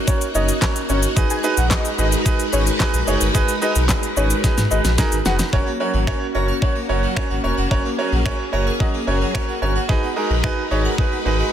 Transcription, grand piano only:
0.07 C#4 F#4 A#4 C#5
0.35 C#4 F#4 A#4 C#5
0.62 C#4 F#4 A#4 C#5
0.89 C#4 F#4 A#4 C#5
1.16 D#4 F#4 G#4 B4
1.44 D#4 F#4 G#4 B4
1.71 D#4 F#4 G#4 B4
1.98 D#4 F#4 G#4 B4
2.25 D#4 F#4 G#4 B4
2.53 D#4 F#4 G#4 B4
2.80 D#4 F#4 G#4 B4
3.07 D#4 F#4 G#4 C#5
3.34 D#4 F#4 G#4 B4
3.62 D#4 F#4 G#4 B4
3.89 D#4 F#4 G#4 B4
4.16 D#4 F#4 G#4 B4
4.44 D#4 F#4 G#4 B4
4.71 D#4 F#4 G#4 B4
4.98 D#4 F#4 G#4 A#4
5.26 D#4 F#4 G#4 B4
5.53 C#4 F#4 A#4 C#5
5.80 C#4 F#4 A#4 C#5
6.07 C#4 F#4 A#4 C#5
6.35 C#4 F#4 A#4 C#5
6.62 C#4 F#4 A#4 C#5
6.89 C#4 F#4 A#4 C#5
7.16 C#4 F#4 A#4 C#5
7.43 C#4 F#4 A#4 C#5
7.71 C#4 F#4 A#4 C#5
7.98 C#4 F#4 A#4 C#5
8.25 C#4 F#4 A#4 C#5
8.52 C#4 F#4 A#4 C#5
8.80 C#4 F#4 A#4 D#5
9.07 C#4 F#4 A#4 C#5
9.34 C#4 F#4 A#4 C#5
9.62 C#4 F#4 A#4 C#5
9.89 D#4 F#4 G#4 B4
10.16 D#4 F#4 G#4 A#4
10.43 D#4 F#4 G#4 B4
10.71 D#4 F#4 G#4 C#5
10.98 D#4 F#4 G#4 B4
11.25 D#4 F#4 G#4 B4

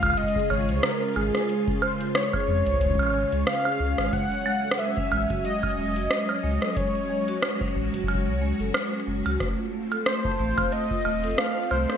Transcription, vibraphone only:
0.03 F4
0.17 G#3
0.36 G#4
0.50 G#3
0.69 C5
0.83 G#3
1.02 C#4
1.16 G#3
1.35 F4
1.49 G#3
1.68 C#4
1.82 G#3
2.01 F4
2.15 G#3
2.34 G#4
2.48 G#3
2.67 C5
2.81 G#3
3.00 C#4
3.14 G#3
3.33 G#3
3.47 C#4
3.65 G#4
3.80 C#4
3.98 G#3
4.13 G#3
4.31 C#5
4.46 G#3
4.64 A4
4.79 G#3
4.97 C#4
5.12 G#3
5.30 F#4
5.45 G#3
5.63 C#4
5.78 G#3
5.96 F#4
6.11 G#3
6.29 C#5
6.44 G#3
6.62 A4
6.77 G#3
6.95 C#4
7.10 G#3
7.28 F#4
7.42 G#3
7.61 C#4
7.76 G#3
7.94 F#4
8.08 G#3
8.27 C#5
8.41 G#3
8.60 A4
8.74 G#3
8.93 C#4
9.07 G#3
9.26 F#4
9.40 A3
9.59 F4
9.73 A3
9.92 A4
10.06 A3
10.25 A5
10.39 A3
10.58 F5
10.72 A3
10.91 F4
11.05 A3
11.24 A4
11.38 A3
11.57 F4
11.71 A3
11.90 A4

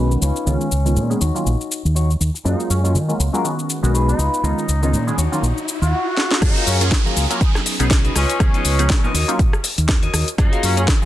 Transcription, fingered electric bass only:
Already playing: B1
0.22 C#2
0.46 C#2
0.71 C#2
0.96 A#2
1.21 D#2
1.46 A#1
1.85 D#2
2.20 D#2
2.45 F#2
2.70 F#2
2.95 D#3
3.19 C#2
3.83 B1
4.18 C#2
4.43 C#2
4.68 C#2
4.93 A#2
5.18 D#2
5.42 A#1
5.82 D#2
6.42 F#2
6.66 F#2
6.91 D#3
7.16 C#2
7.80 B1
8.15 C#2
8.40 C#2
8.65 C#2
8.90 A#2
9.14 D#2
9.39 A#1
9.78 D#2
10.13 D#2
10.38 F#2
10.63 F#2
10.88 D#3

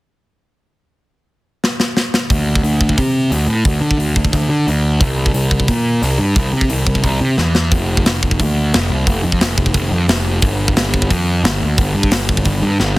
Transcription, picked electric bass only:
2.30 D2
2.63 D2
2.98 C3
3.31 D2
3.47 A2
3.65 D2
3.81 D3
3.97 D2
4.16 D2
4.33 D2
4.49 D3
4.67 D2
5.00 C2
5.34 C2
5.68 A#2
6.02 C2
6.18 G2
6.36 C2
6.53 C3
6.70 C2
6.87 C2
7.04 C2
7.21 C3
7.38 E2
7.72 F1
8.05 F1
8.39 D2
8.74 F1
8.90 C2
9.06 F1
9.24 F2
9.41 F1
9.58 F1
9.74 F1
9.91 F2
10.08 F1
10.42 G1
10.76 G1
11.10 F2
11.43 G1
11.61 D2
11.78 G1
11.94 G2
12.12 G1
12.29 G1
12.45 G1
12.62 G2
12.79 G1

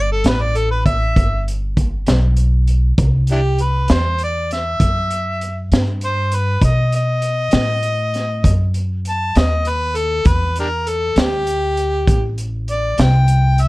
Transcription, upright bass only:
Already playing: G1
0.24 A1
1.16 G1
2.08 B1
2.98 C2
3.90 E2
4.80 F#2
5.72 G2
6.62 B2
7.53 A2
8.45 F#2
9.36 D#2
10.25 E2
11.16 D2
12.07 A1
12.99 C2

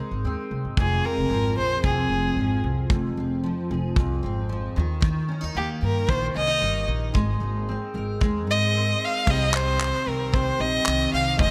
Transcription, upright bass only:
0.11 G#1
0.25 D#2
0.51 C2
0.65 G#1
0.77 F1
1.18 F1
1.30 G#1
1.57 A#1
1.84 C2
2.09 F1
2.36 G#1
2.64 C2
2.90 F1
3.17 F1
3.71 F1
3.96 C2
4.24 G#1
4.77 D#2
5.43 D#2
5.56 D#2
5.82 G2
6.09 A#1
6.36 C2
6.62 G1
6.88 A#1
7.15 G#1
7.41 G#1
7.94 G#1
8.21 D#2
8.48 G#2
9.27 C2
10.06 C2
10.60 A#1
10.87 C2
11.13 C2
11.40 F1

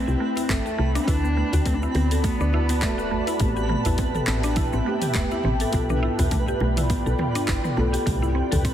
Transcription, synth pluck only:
0.07 G4
0.20 A3
0.37 E4
0.49 C4
0.66 A4
0.78 A3
0.95 D4
1.08 E4
1.24 B3
1.37 A3
1.54 F#4
1.67 A3
1.83 E4
1.96 B3
2.12 A4
2.24 A3
2.41 D4
2.54 E4
2.70 B3
2.82 A3
2.98 F#4
3.11 A3
3.28 E4
3.40 A3
3.57 G4
3.69 A3
3.86 E4
3.99 C4
4.16 A4
4.28 C4
4.44 D4
4.57 E4
4.73 C4
4.86 A3
5.03 G4
5.15 A3
5.32 E4
5.45 C4
5.61 A4
5.74 B3
5.90 D4
6.03 E4
6.19 B3
6.32 A3
6.48 G4
6.61 A3
6.78 E4
6.90 B3
7.06 A4
7.19 B3
7.35 D4
7.47 E4
7.64 B3
7.77 A3
7.93 G4
8.06 A3
8.22 E4
8.35 C4
8.52 A4
8.65 C4

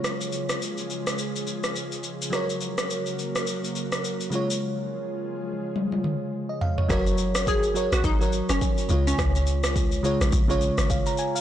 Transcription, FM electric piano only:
Already playing: C#3 G#3 F4 C#5
2.30 F#3 F#4 A#4
2.35 C#5
4.30 C#3 G#3 F4
4.35 C#5
6.49 D#5
6.61 F5
6.78 C#5
6.89 F#3 F#4 A#4 C#5
7.74 F#3 F#4 A#4 C#5
8.19 F#3 F#4 A#4 C#5
8.89 C#3 G#3 F4 C#5
10.03 C#3 G#3 F4 C#5
10.48 C#3 G#3 F4 C#5
10.90 F5
11.07 A#5
11.19 G#5
11.35 F5

